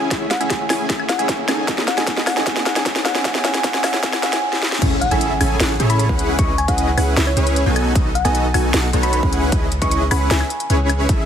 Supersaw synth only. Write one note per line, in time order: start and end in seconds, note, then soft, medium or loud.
0.11 0.25 C#4 medium
0.11 0.25 E4 medium
0.11 0.25 G#4 medium
0.11 0.25 E5 medium
0.40 0.62 C#4 medium
0.40 0.62 E4 medium
0.40 0.62 G#4 medium
0.40 0.62 E5 medium
0.70 0.87 C#4 medium
0.70 0.87 E4 medium
0.70 0.87 G#4 medium
0.70 0.87 G#5 medium
0.89 1.03 C#4 medium
0.89 1.03 E4 medium
0.89 1.03 G#4 medium
0.89 1.03 E5 medium
1.19 1.41 C#4 medium
1.19 1.41 E4 medium
1.19 1.41 G#4 medium
1.19 1.41 E5 medium
1.48 1.66 C#4 medium
1.48 1.66 D#4 medium
1.48 1.66 G#4 medium
1.48 1.66 A4 medium
1.48 1.66 G#5 medium
1.68 1.82 C#4 medium
1.68 1.82 D#4 medium
1.68 1.82 G#4 medium
1.68 1.82 A4 medium
1.68 1.82 D#5 medium
1.97 2.06 C#4 medium
1.97 2.06 D#4 medium
1.97 2.06 G#4 medium
1.97 2.06 A4 medium
1.97 2.06 D#5 medium
2.07 2.21 C#4 medium
2.07 2.21 D#4 medium
2.07 2.21 G#4 medium
2.07 2.21 A4 medium
2.07 2.21 D#5 medium
2.37 2.45 C#4 medium
2.37 2.45 D#4 medium
2.37 2.45 G#4 medium
2.37 2.45 A4 medium
2.37 2.45 D#5 medium
2.46 2.60 C#4 medium
2.46 2.60 D#4 medium
2.46 2.60 G#4 medium
2.46 2.60 A4 medium
2.46 2.60 D#5 medium
2.76 2.84 C#4 medium
2.76 2.84 D#4 medium
2.76 2.84 G#4 medium
2.76 2.84 A4 medium
2.76 2.84 D#5 medium
2.85 2.99 C#4 medium
2.85 2.99 D#4 medium
2.85 2.99 G#4 medium
2.85 2.99 A4 medium
2.85 2.99 D#5 medium
3.15 3.23 C#4 medium
3.15 3.23 E4 medium
3.15 3.23 G#4 medium
3.15 3.23 E5 medium
3.25 3.39 C#4 medium
3.25 3.38 E4 medium
3.25 3.38 G#4 medium
3.25 3.39 E5 medium
3.44 3.58 C#4 medium
3.44 3.58 E4 medium
3.44 3.58 G#4 medium
3.44 3.58 E5 medium
3.64 3.78 C#4 medium
3.64 3.78 E4 medium
3.64 3.78 G#4 medium
3.64 3.78 E5 medium
3.84 3.97 C#4 medium
3.84 3.97 E4 medium
3.84 3.97 G#4 medium
3.84 3.97 E5 medium
4.04 4.17 C#4 medium
4.04 4.17 E4 medium
4.04 4.17 G#4 medium
4.04 4.17 E5 medium
4.23 4.37 C#4 medium
4.23 4.37 E4 medium
4.23 4.37 G#4 medium
4.23 4.37 E5 medium
4.82 4.95 C#4 medium
4.82 4.95 E4 medium
4.82 4.95 G#4 medium
4.82 4.95 A4 medium
4.82 4.95 E5 medium
5.11 5.33 C#4 medium
5.11 5.33 E4 medium
5.11 5.33 G#4 medium
5.11 5.33 A4 medium
5.11 5.33 E5 medium
5.40 5.58 C#4 medium
5.40 5.58 E4 medium
5.40 5.58 G#4 medium
5.40 5.58 A4 medium
5.40 5.58 G#5 medium
5.60 5.74 C#4 medium
5.60 5.74 E4 medium
5.60 5.74 G#4 medium
5.60 5.74 A4 medium
5.60 5.74 F#5 medium
5.80 6.07 C#4 medium
5.80 6.07 E4 medium
5.80 6.07 G#4 medium
5.80 6.07 A4 medium
5.80 6.07 C#5 medium
6.09 6.36 C#4 loud
6.09 6.36 E4 medium
6.09 6.36 G#4 medium
6.09 6.36 B4 medium
6.09 6.36 F#5 loud
6.39 6.52 C#4 medium
6.39 6.52 E4 medium
6.39 6.52 G#4 medium
6.39 6.52 B4 medium
6.39 6.52 D#5 medium
6.68 6.90 C#4 medium
6.68 6.90 E4 medium
6.68 6.90 G#4 medium
6.68 6.90 B4 medium
6.68 6.90 D#5 medium
6.97 7.15 C#4 medium
6.97 7.15 E4 medium
6.97 7.15 G#4 medium
6.97 7.15 B4 medium
6.97 7.15 F#5 medium
7.17 7.31 C#4 medium
7.17 7.31 E4 medium
7.17 7.31 G#4 medium
7.17 7.31 B4 medium
7.17 7.31 E5 medium
7.37 7.64 C#4 medium
7.37 7.64 E4 medium
7.37 7.64 G#4 medium
7.37 7.64 B4 medium
7.37 7.64 C#5 medium
7.66 7.93 B3 medium
7.66 7.93 D#4 medium
7.66 7.93 F#4 medium
7.66 7.93 A4 medium
7.66 7.93 G#5 loud
7.95 8.09 B3 medium
7.95 8.09 D#4 medium
7.95 8.09 F#4 medium
7.95 8.09 A4 medium
7.95 8.09 D#5 medium
8.25 8.47 B3 medium
8.25 8.47 D#4 medium
8.25 8.47 F#4 medium
8.25 8.47 A4 medium
8.25 8.47 D#5 medium
8.54 8.71 B3 medium
8.54 8.72 D#4 medium
8.54 8.72 F#4 medium
8.54 8.71 A4 medium
8.54 8.71 G#5 medium
8.74 8.88 B3 medium
8.74 8.88 D#4 medium
8.74 8.88 F#4 medium
8.74 8.87 A4 medium
8.74 8.88 F#5 medium
8.93 9.21 B3 medium
8.93 9.21 D#4 medium
8.93 9.21 F#4 medium
8.93 9.21 A4 medium
8.93 9.21 C#5 medium
9.23 9.50 C#4 loud
9.23 9.50 E4 medium
9.23 9.50 G#4 medium
9.23 9.50 B4 medium
9.23 9.50 F#5 loud
9.52 9.66 C#4 medium
9.52 9.66 E4 medium
9.52 9.66 G#4 medium
9.52 9.66 B4 medium
9.52 9.66 D#5 medium
9.82 10.04 C#4 medium
9.82 10.03 E4 medium
9.82 10.04 G#4 medium
9.82 10.03 B4 medium
9.82 10.03 D#5 medium
10.11 10.28 C#4 medium
10.11 10.28 E4 medium
10.11 10.28 G#4 medium
10.11 10.28 B4 medium
10.11 10.28 F#5 medium
10.31 10.44 C#4 medium
10.31 10.44 E4 medium
10.31 10.44 G#4 medium
10.31 10.44 B4 medium
10.31 10.44 E5 medium
10.70 11.07 C#4 medium
10.70 11.07 E4 medium
10.70 11.07 G#4 medium
10.70 11.07 B4 medium
10.70 11.07 C#5 loud
11.09 11.23 C#4 medium
11.09 11.23 E4 medium
11.09 11.23 G#4 medium
11.09 11.23 A4 medium
11.09 11.23 E5 medium